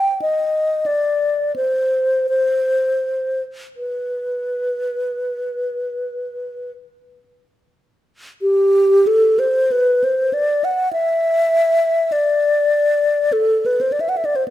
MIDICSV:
0, 0, Header, 1, 2, 480
1, 0, Start_track
1, 0, Tempo, 1287554
1, 325, Tempo, 1415094
1, 805, Time_signature, 4, 2, 24, 8
1, 805, Tempo, 1488834
1, 2245, Tempo, 1671309
1, 2725, Tempo, 1310044
1, 3205, Tempo, 1197605
1, 4645, Tempo, 1140684
1, 5139, End_track
2, 0, Start_track
2, 0, Title_t, "Alto flute"
2, 0, Program_c, 0, 73
2, 0, Note_on_c, 0, 79, 73
2, 78, Note_off_c, 0, 79, 0
2, 81, Note_on_c, 0, 75, 65
2, 321, Note_on_c, 0, 74, 63
2, 327, Note_off_c, 0, 75, 0
2, 556, Note_off_c, 0, 74, 0
2, 558, Note_on_c, 0, 72, 58
2, 800, Note_off_c, 0, 72, 0
2, 807, Note_on_c, 0, 72, 64
2, 1170, Note_off_c, 0, 72, 0
2, 1282, Note_on_c, 0, 71, 44
2, 2232, Note_off_c, 0, 71, 0
2, 2723, Note_on_c, 0, 67, 71
2, 2961, Note_on_c, 0, 69, 66
2, 2967, Note_off_c, 0, 67, 0
2, 3079, Note_on_c, 0, 72, 67
2, 3084, Note_off_c, 0, 69, 0
2, 3198, Note_on_c, 0, 71, 63
2, 3204, Note_off_c, 0, 72, 0
2, 3327, Note_on_c, 0, 72, 61
2, 3333, Note_off_c, 0, 71, 0
2, 3446, Note_on_c, 0, 74, 63
2, 3452, Note_off_c, 0, 72, 0
2, 3569, Note_on_c, 0, 78, 60
2, 3575, Note_off_c, 0, 74, 0
2, 3681, Note_off_c, 0, 78, 0
2, 3683, Note_on_c, 0, 76, 76
2, 4161, Note_on_c, 0, 74, 70
2, 4167, Note_off_c, 0, 76, 0
2, 4644, Note_on_c, 0, 69, 71
2, 4650, Note_off_c, 0, 74, 0
2, 4784, Note_on_c, 0, 71, 65
2, 4790, Note_off_c, 0, 69, 0
2, 4848, Note_on_c, 0, 72, 56
2, 4854, Note_off_c, 0, 71, 0
2, 4895, Note_on_c, 0, 74, 57
2, 4902, Note_off_c, 0, 72, 0
2, 4930, Note_on_c, 0, 76, 56
2, 4936, Note_off_c, 0, 74, 0
2, 4966, Note_on_c, 0, 78, 58
2, 4972, Note_off_c, 0, 76, 0
2, 4999, Note_on_c, 0, 76, 55
2, 5005, Note_off_c, 0, 78, 0
2, 5033, Note_on_c, 0, 74, 57
2, 5039, Note_off_c, 0, 76, 0
2, 5078, Note_on_c, 0, 72, 55
2, 5085, Note_off_c, 0, 74, 0
2, 5126, Note_off_c, 0, 72, 0
2, 5139, End_track
0, 0, End_of_file